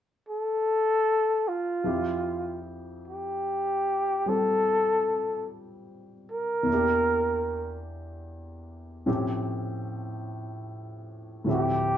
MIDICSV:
0, 0, Header, 1, 3, 480
1, 0, Start_track
1, 0, Key_signature, -1, "major"
1, 0, Tempo, 1207243
1, 732, Time_signature, 4, 2, 24, 8
1, 2174, Tempo, 1197605
1, 4783, End_track
2, 0, Start_track
2, 0, Title_t, "Flugelhorn"
2, 0, Program_c, 0, 56
2, 115, Note_on_c, 0, 69, 82
2, 590, Note_on_c, 0, 65, 65
2, 596, Note_off_c, 0, 69, 0
2, 1064, Note_off_c, 0, 65, 0
2, 1224, Note_on_c, 0, 67, 64
2, 1705, Note_on_c, 0, 69, 85
2, 1711, Note_off_c, 0, 67, 0
2, 2181, Note_off_c, 0, 69, 0
2, 2514, Note_on_c, 0, 70, 84
2, 3129, Note_off_c, 0, 70, 0
2, 4601, Note_on_c, 0, 67, 86
2, 4783, Note_off_c, 0, 67, 0
2, 4783, End_track
3, 0, Start_track
3, 0, Title_t, "Grand piano"
3, 0, Program_c, 1, 0
3, 731, Note_on_c, 1, 41, 38
3, 732, Note_on_c, 1, 53, 34
3, 735, Note_on_c, 1, 64, 35
3, 739, Note_on_c, 1, 67, 43
3, 803, Control_c, 1, 64, 127
3, 1694, Note_on_c, 1, 55, 33
3, 1698, Note_on_c, 1, 60, 30
3, 1702, Note_on_c, 1, 65, 30
3, 1706, Note_on_c, 1, 72, 38
3, 2639, Note_on_c, 1, 40, 42
3, 2652, Note_on_c, 1, 52, 41
3, 2657, Note_off_c, 1, 55, 0
3, 2658, Note_off_c, 1, 41, 0
3, 2659, Note_off_c, 1, 53, 0
3, 2660, Note_off_c, 1, 60, 0
3, 2660, Note_off_c, 1, 64, 0
3, 2661, Note_off_c, 1, 65, 0
3, 2661, Note_on_c, 1, 58, 41
3, 2662, Note_off_c, 1, 67, 0
3, 2663, Note_off_c, 1, 72, 0
3, 2663, Control_c, 1, 64, 0
3, 2671, Note_on_c, 1, 62, 40
3, 2682, Note_on_c, 1, 67, 48
3, 2728, Control_c, 1, 64, 127
3, 3611, Note_off_c, 1, 40, 0
3, 3614, Note_off_c, 1, 67, 0
3, 3614, Note_on_c, 1, 45, 47
3, 3616, Note_on_c, 1, 53, 43
3, 3617, Note_off_c, 1, 52, 0
3, 3617, Note_on_c, 1, 60, 40
3, 3617, Note_on_c, 1, 61, 42
3, 3620, Note_on_c, 1, 67, 47
3, 3622, Note_off_c, 1, 58, 0
3, 3626, Control_c, 1, 64, 0
3, 3627, Note_off_c, 1, 62, 0
3, 3691, Control_c, 1, 64, 127
3, 4567, Note_off_c, 1, 45, 0
3, 4569, Note_on_c, 1, 38, 42
3, 4573, Note_off_c, 1, 53, 0
3, 4573, Note_on_c, 1, 45, 42
3, 4576, Note_off_c, 1, 60, 0
3, 4577, Note_off_c, 1, 61, 0
3, 4578, Note_off_c, 1, 67, 0
3, 4579, Note_on_c, 1, 53, 40
3, 4582, Note_on_c, 1, 60, 42
3, 4583, Control_c, 1, 64, 0
3, 4584, Note_on_c, 1, 64, 42
3, 4592, Note_on_c, 1, 67, 46
3, 4659, Control_c, 1, 64, 127
3, 4783, Note_off_c, 1, 38, 0
3, 4783, Note_off_c, 1, 45, 0
3, 4783, Note_off_c, 1, 53, 0
3, 4783, Note_off_c, 1, 60, 0
3, 4783, Note_off_c, 1, 64, 0
3, 4783, Note_off_c, 1, 67, 0
3, 4783, End_track
0, 0, End_of_file